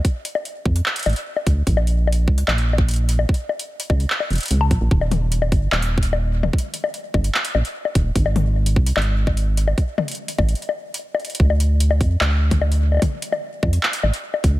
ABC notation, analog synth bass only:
X:1
M:4/4
L:1/16
Q:1/4=148
K:Bbdor
V:1 name="Analog synth bass" clef=bass
z6 F,,2 z2 =A,,, z3 =D,,2 | B,,,6 D,,2 B,,,8 | z6 D,,2 z2 F,,, z D,,2 B,,, B,,, | E,,,6 G,,,2 E,,,8 |
z6 G,,,2 z2 B,,, z3 E,,,2 | A,,,6 C,,2 A,,,8 | z6 =A,,,2 z8 | =D,,6 F,,2 D,,8 |
z6 F,,2 z2 =A,,, z3 =D,,2 |]